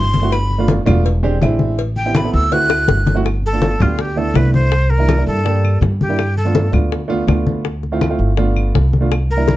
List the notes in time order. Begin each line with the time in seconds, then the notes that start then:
Already playing: G1 C6
0.14 cowbell, high conga
0.22 A3 C4 E4 F#4
0.32 B5, cowbell, high conga, claves
0.50 high conga
0.58 A3 B3 D4 F4
0.68 cowbell, high conga
0.86 E1 A3 B3 D4 F4, cowbell, high conga, low conga, claves
1.04 cowbell, high conga
1.23 G#3 C4 D4 G4, high conga
1.41 A1 G#3 C4 D4 E4, cowbell, high conga, claves
1.59 high conga
1.78 cowbell, high conga
1.96 G5, high conga
2.06 B3 C4 E4 G4
2.15 B5, cowbell, high conga, claves
2.24 B3 C4 E4 A4
2.34 D2 E6
2.52 A3 C4 E4 F#4 F#6, cowbell, high conga
2.70 high bongo, high conga, claves
2.88 G1, cowbell, high bongo, high conga
3.07 cowbell, low bongo, high conga
3.15 A3 C4 E4 F#4
3.25 high bongo, high conga, claves
3.43 A4, high conga
3.53 A3 B3 D4 F4
3.62 high bongo, high conga
3.80 D2 A3 B3 D4 F4 G4, high conga, low conga, claves
3.99 G4, high bongo, high conga
4.16 A3 B3 D4 E4 A4, high conga
4.34 C2 A3 B3 D4 E4 B4, high bongo, low bongo, high conga, claves
4.54 C5, high conga
4.72 high bongo, high conga
4.90 A#4, high bongo, high conga
4.98 G3 A#3 D4 E4
5.09 high bongo, high conga, claves
5.17 G3 A#3 D4 E4
5.27 G2 A4, high bongo
5.44 G3 A#3 D4 G4, high bongo, high conga
5.64 high conga, claves
5.81 G2, high bongo, low bongo, high conga
6.01 G4, high bongo, high conga
6.09 G3 A#3 D4 E4
6.19 high bongo, high conga, claves
6.37 A4, high conga
6.45 A3 B3 D4 F4
6.55 high bongo, high conga
6.72 D2 A3 B3 D4 F4, high conga, low conga, claves
6.92 high bongo, high conga
7.08 A3 B3 D4 F4, high conga
7.27 D2 A3 B3 D4 F4, high bongo, low bongo, high conga, claves
7.47 high conga
7.65 high bongo, high conga
7.83 high bongo, high conga
7.92 A3 C4 E4 F4
8.01 high bongo, high conga, claves
8.09 A3 C4 E4 F4
8.19 G1, high bongo
8.37 A3 B3 D4 F4, high bongo, high conga
8.56 high conga, claves
8.75 C2, high bongo, low bongo, high conga
8.93 high bongo, high conga
9.01 A3 B3 D4 F4
9.12 high bongo, high conga, claves
9.30 A#4, high conga
9.37 G3 A#3 D4 E4
9.48 high bongo, high conga